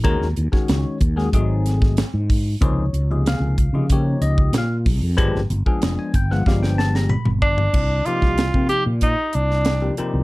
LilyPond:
<<
  \new Staff \with { instrumentName = "Tenor saxophone" } { \time 4/4 \key c \minor \tempo 4 = 94 r1 | r1 | r2. r8 d'8~ | d'8 f'4 g'8 ees'8 d'4 r8 | }
  \new Staff \with { instrumentName = "Tine electric piano" } { \time 4/4 \key c \minor << { r1 | des''4 f''4 des''8 ees''8 f''8 r8 | r4 r16 aes''16 g''16 fis''16 f''16 g''16 a''16 bes''16 b''8 r8 | r1 | } \\ { <ees aes des' ges' bes'>16 r16 <ges' bes'>16 <ees aes des' ges' des''>8. r16 <ees aes des' ges' aes'>16 <ges a c' ees' aes'>4 r8 <ees' aes'>16 <ees' ges'>16 | <c f bes ees' aes'>16 r16 <ees' g'>16 <c f bes ees' aes'>8. r16 <c f bes ees' aes'>16 <des f bes ees' g'>4 r8 <ees' aes'>16 <ees' aes'>16 | <f aes b d' g'>16 r16 <d' f'>16 <f aes b d' aes'>8. r16 <f aes b d' f'>16 <f aes b d' g'>4 r8 <d' g'>16 <d' f'>16 | r8 <c f bes ees' g'>8 r16 <c f bes ees' g'>8 r4. <c f bes ees' g'>16 <c f bes ees' g'>8 | } >> }
  \new Staff \with { instrumentName = "Fretless electric bass" } { \clef bass \time 4/4 \key c \minor ees,16 ees,16 ees,16 r16 des,16 r16 ees,8 aes,,4~ aes,,16 aes,8. | des,8 des,8. des,8 des8. des,8 bes,8 c,16 f,16 | g,,16 g,,16 g,,16 r16 f,,16 r16 g,,8 g,,4~ g,,16 g,,8. | c,8 r16 c,8 c16 r16 bes,8 r16 c,4 r16 c,16 | }
  \new DrumStaff \with { instrumentName = "Drums" } \drummode { \time 4/4 <hh bd>16 sn16 hh16 <bd sn>16 <hh sn>8 <hh bd>16 sn16 <hh bd>8 <hh sn>16 <bd sn>16 <hh sn>8 <hho bd>8 | <hh bd>8 hh8 <hh sn>8 <hh bd>8 <hh bd>8 hh16 bd16 <hh sn>8 <hho bd>8 | <hh bd>16 sn16 hh16 bd16 <hh sn>8 <hh bd>16 sn16 <bd sn>16 sn16 sn16 sn16 toml16 toml16 bd16 tomfh16 | <cymc bd>8 hh16 <bd sn>16 <hh sn>16 bd16 hh8 <hh bd>8 hh16 sn16 <hh sn>8 hh8 | }
>>